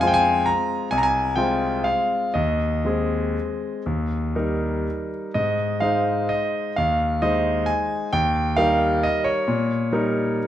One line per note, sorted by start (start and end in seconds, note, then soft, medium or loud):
0.00 0.48 F2 medium
0.00 0.88 G#3 soft
0.00 0.88 C4 soft
0.00 0.88 F4 soft
0.00 0.48 F5 medium
0.00 0.14 G#5 medium
0.07 0.14 G5 medium
0.14 0.46 G#5 medium
0.46 0.91 A#5 medium
0.91 1.35 C2 medium
0.91 0.97 G#5 medium
0.98 1.04 A#5 medium
1.03 1.35 G#5 medium
1.36 2.31 G#3 soft
1.36 2.31 C4 soft
1.36 2.31 F4 soft
1.36 1.84 G5 medium
1.84 2.34 F5 medium
2.34 2.83 D#2 soft
2.34 5.10 D#5 medium
2.85 3.81 G#3 soft
2.85 3.82 C4 soft
2.85 3.82 G#4 soft
3.86 4.33 D#2 soft
4.35 5.30 G3 soft
4.35 5.31 D#4 soft
4.35 5.31 A#4 soft
5.34 5.81 G#2 soft
5.34 5.82 D#5 medium
5.80 6.72 G#3 soft
5.80 6.72 D#4 soft
5.80 6.73 C5 soft
5.80 6.29 F5 medium
6.29 6.76 D#5 medium
6.76 7.21 D#2 soft
6.76 7.22 F5 medium
7.22 8.09 G#3 soft
7.22 8.10 D#4 soft
7.22 8.10 C5 soft
7.22 7.68 D#5 medium
7.66 8.12 G#5 medium
8.13 8.57 D#2 medium
8.13 8.58 G5 medium
8.57 9.44 G3 soft
8.57 9.44 D#4 soft
8.57 9.44 A#4 soft
8.57 9.03 F5 medium
9.03 9.26 D#5 medium
9.24 10.47 C#5 medium
9.48 9.91 A#2 medium
9.92 10.47 G3 soft
9.92 10.47 D#4 soft
9.92 10.47 A#4 soft